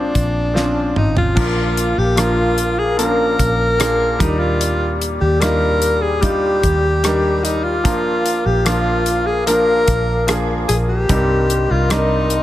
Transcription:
Already playing: A#1 A#2 F3 C4 D4 G#4 A#4 C5 D5
0.15 A#1, kick, closed hi-hat
0.54 F3 C4 C#4 F4, snare
0.62 D4
0.96 G#1 D#4, mid tom
1.17 F4, floor tom
1.35 A#1 A#2 F3 A#3 D4 A#4 F5 D6, kick, crash
1.77 closed hi-hat
1.98 A#1 G4
2.16 F3 A#3 D4 F4 A#4, cross-stick, closed hi-hat
2.58 closed hi-hat
2.78 G#4
2.97 F3 A#3 C#4 A#4, closed hi-hat
3.05 D4
3.39 A#1, kick, closed hi-hat
3.79 F3 A#3 D4 G#4, cross-stick, closed hi-hat
4.19 D#2 A#2 G3 D4 D#4 G4 A#4 D5, kick, closed hi-hat
4.40 F4
4.61 closed hi-hat
5.02 closed hi-hat
5.21 D#2 G4
5.40 G3 D4 D#4 F4 A#4, cross-stick, closed hi-hat
5.82 closed hi-hat
6.02 G#4
6.21 G3 D4 D#4 F4 G4, kick, closed hi-hat
6.63 D#2, kick, closed hi-hat
7.03 G3 D4 D#4 A#4, cross-stick, closed hi-hat
7.44 D#4, closed hi-hat
7.64 F4
7.84 A#1 F3 A#3 D4 A#4 F5, kick, closed hi-hat
8.26 closed hi-hat
8.46 A#1 G4
8.65 F3 A#3 D4 F4 A#4, cross-stick, closed hi-hat
9.06 closed hi-hat
9.26 G#4
9.46 F3 A#3 D4 A#4, closed hi-hat
9.88 A#1, kick, closed hi-hat
10.27 F3 A#3 D4 G#4, cross-stick, closed hi-hat
10.68 A#1 G#4, closed hi-hat
10.89 G4
11.09 C2 G2 G3 C4 D#4 A#4 D#5 C6, kick, closed hi-hat
11.50 closed hi-hat
11.71 C2 F4
11.90 G3 C4 D4 D#4 A#4, cross-stick, closed hi-hat
11.97 D#4
12.30 closed hi-hat

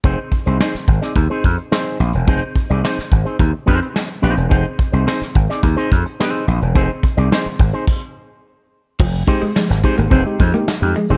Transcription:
0.04 F1 C4 D#4 G#4 C5, kick, closed hi-hat
0.17 closed hi-hat
0.32 muted clean electric guitar stroke, kick, closed hi-hat
0.45 C2 C4 D#4 G#4 C5, closed hi-hat
0.60 C4 D#4 G#4 C5, snare
0.75 muted slap bass stroke, snare
0.87 G#1, muted clean electric guitar stroke, kick, closed hi-hat
1.01 C4 D#4 G#4 D5, snare, closed hi-hat
1.16 D#2, muted clean electric guitar stroke, kick, closed hi-hat
1.30 C4 D#4 G#4 C5
1.44 F2, kick, closed hi-hat
1.58 muted clean electric guitar stroke, closed hi-hat
1.71 C4 D#4 G#4 C5, snare
1.87 closed hi-hat
2.00 A#1, muted clean electric guitar stroke, closed hi-hat
2.13 E1, muted clean electric guitar stroke, closed hi-hat
2.27 F1 C4 D#4 G#4 C5, kick, closed hi-hat
2.41 closed hi-hat
2.56 muted clean electric guitar stroke, kick, closed hi-hat
2.69 C2 C4 D#4 G#4 D5, closed hi-hat
2.83 C4 D#4 G#4 C5, snare
2.99 muted slap bass stroke, snare
3.11 G#1, muted clean electric guitar stroke, kick, closed hi-hat
3.25 C4 D#4 G#4 C5, closed hi-hat
3.39 D#2, muted clean electric guitar stroke, kick, closed hi-hat
3.53 muted clean electric guitar stroke
3.66 F2 C4 D#4 G#4 C5, kick, closed hi-hat
3.81 muted clean electric guitar stroke, closed hi-hat
3.94 muted clean electric guitar stroke, snare
4.08 muted clean electric guitar stroke
4.22 A#1 C4 D#4 G#4 C5, closed hi-hat
4.36 E1, muted clean electric guitar stroke, closed hi-hat
4.50 F1 C4 D#4 G#4 C5, kick, closed hi-hat
4.64 closed hi-hat
4.78 muted clean electric guitar stroke, kick, closed hi-hat
4.92 C2 C4 D#4 G#4 C5, closed hi-hat
5.06 C4 D#4 G#4 C5, snare
5.21 muted slap bass stroke, snare, closed hi-hat
5.35 G#1, muted clean electric guitar stroke, kick, closed hi-hat
5.49 C4 D#4 G#4 D5, snare, closed hi-hat
5.63 D#2, muted clean electric guitar stroke, kick, closed hi-hat
5.77 C4 D#4 G#4 C5
5.91 F2, muted clean electric guitar stroke, kick, closed hi-hat
6.06 muted clean electric guitar stroke, closed hi-hat
6.20 B3 D4 G4 B4, snare
6.31 C4 D#4 G#4 C5, closed hi-hat
6.47 A#1, muted clean electric guitar stroke, closed hi-hat
6.61 E1, muted clean electric guitar stroke, closed hi-hat
6.75 F1 C4 D#4 G#4 C5, kick, closed hi-hat
6.89 closed hi-hat
7.03 muted clean electric guitar stroke, kick, closed hi-hat
7.17 C2 C4 D#4 G#4 D5, closed hi-hat
7.31 C4 D#4 G#4 C5, snare
7.46 muted slap bass stroke, closed hi-hat
7.59 G#1, muted clean electric guitar stroke, kick, open hi-hat
7.73 C4 D#4 G#4 C5, closed hi-hat
7.87 kick, crash
9.00 F1 F3, kick, crash
9.13 closed hi-hat
9.27 G#3 C4 D#4 G4 G#4 C5, muted clean electric guitar stroke, kick, closed hi-hat
9.42 G#3 D#4 G4, muted slap bass stroke, closed hi-hat
9.56 F3 G#3, snare
9.69 G#1, muted clean electric guitar stroke, snare
9.83 G#3 C4 D#4 G4 G#4 C5, kick, open hi-hat
9.97 G#1 A#3 D#4 G4, muted clean electric guitar stroke, closed hi-hat
10.10 F1 C4 D#4 G#4 C5, kick, closed hi-hat
10.25 G#3 D#4 G4, muted clean electric guitar stroke, closed hi-hat
10.39 F2 F3 C4 D#4 G#4 C5, muted clean electric guitar stroke, kick, closed hi-hat
10.52 G#3 A#3 D#4 G4, muted clean electric guitar stroke, closed hi-hat
10.66 muted clean electric guitar stroke, snare
10.81 F2 G#3 D#4 G4, muted clean electric guitar stroke, closed hi-hat
10.96 F3 G#3, closed hi-hat
11.08 E1 G#3 C4 D#4 G4 G#4 C5, closed hi-hat

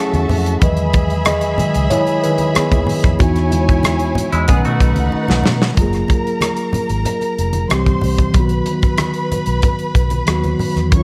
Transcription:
Already playing: F#3 A3 E4 F#4 A4 E5 A5
0.00 C#4 G#4
0.13 E2, closed hi-hat, muted conga, high conga
0.29 F2, open hi-hat, low conga
0.46 closed hi-hat
0.61 E2 D#3 F#3 G#3 G#4 B4 D#5 E5 B5, kick, closed hi-hat, muted conga
0.77 closed hi-hat
0.93 kick, closed hi-hat, high conga
1.10 closed hi-hat
1.25 G#4 D#5, cross-stick, closed hi-hat, muted conga, high conga
1.41 closed hi-hat, muted conga
1.58 D#3 F#3 G#3, muted fingered electric bass stroke, closed hi-hat, high conga, low conga
1.74 C#2, closed hi-hat
1.90 E4 C#5, closed hi-hat, low conga
2.07 closed hi-hat, muted conga
2.23 D#3 B4, closed hi-hat
2.38 closed hi-hat, high conga
2.54 B3 G#4, muted fingered electric bass stroke, cross-stick, closed hi-hat
2.72 D#2, kick, closed hi-hat, muted conga, high conga
2.87 open hi-hat, low conga
3.04 F2, kick, cross-stick, closed hi-hat
3.19 E2 E3 B3 D#4 E4 F#4 C#5 G#5, kick, closed hi-hat, muted conga
3.36 cross-stick, closed hi-hat, muted conga
3.50 G#3 E4, closed hi-hat, high conga
3.69 kick, closed hi-hat
3.83 cross-stick, closed hi-hat, muted conga, high conga
3.99 closed hi-hat, muted conga
4.15 muted fingered electric bass stroke, closed hi-hat, high conga, low conga
4.32 E2 G#3 E4, closed hi-hat
4.48 B1 D#3 A3 B3 C#4 D#4 G#4 B4 F#5, kick, closed hi-hat, muted conga, low conga
4.65 B2 A3 F#4, closed hi-hat
4.80 B1, kick, closed hi-hat
4.96 C#2, closed hi-hat, high conga
5.12 muted fingered electric bass stroke, muted conga
5.28 B1, snare, muted conga, high conga
5.44 B2, snare, low conga
5.62 snare
5.74 F#1 F#3 G#3 A#4 A#5, kick, closed hi-hat, muted conga
5.79 A#3 F4 G#4
5.93 cross-stick, closed hi-hat, muted conga
6.08 kick, closed hi-hat, high conga
6.27 closed hi-hat
6.41 cross-stick, closed hi-hat, high conga
6.57 closed hi-hat
6.73 muted fingered electric bass stroke, closed hi-hat, high conga, low conga
6.89 G#1, closed hi-hat
7.05 closed hi-hat, muted conga, low conga
7.21 closed hi-hat, muted conga
7.38 F1, closed hi-hat
7.53 closed hi-hat, high conga
7.69 C2 E3 G3 C4 G4 C5 C6, cross-stick, closed hi-hat, muted conga
7.86 kick, closed hi-hat, muted conga, high conga
8.01 C2, open hi-hat, low conga
8.18 kick, closed hi-hat
8.32 B1 D#3 F#3, kick, closed hi-hat
8.36 B3 F#4 B4 B5
8.49 closed hi-hat
8.66 closed hi-hat, high conga
8.82 kick, closed hi-hat
8.98 cross-stick, closed hi-hat, muted conga, high conga
9.14 closed hi-hat
9.32 muted fingered electric bass stroke, closed hi-hat, high conga, low conga
9.46 B1, closed hi-hat
9.62 kick, closed hi-hat, muted conga, low conga
9.79 closed hi-hat
9.95 B1, kick, closed hi-hat
10.10 closed hi-hat, high conga
10.26 D#2 D#3 F#3 B3, cross-stick, closed hi-hat, muted conga
10.30 F#4
10.44 closed hi-hat, muted conga, high conga
10.59 open hi-hat, low conga
10.76 E2, cross-stick, closed hi-hat
10.89 D#2 D#3 F#3 C#5 C#6, kick, closed hi-hat, muted conga
10.95 C#4 F4

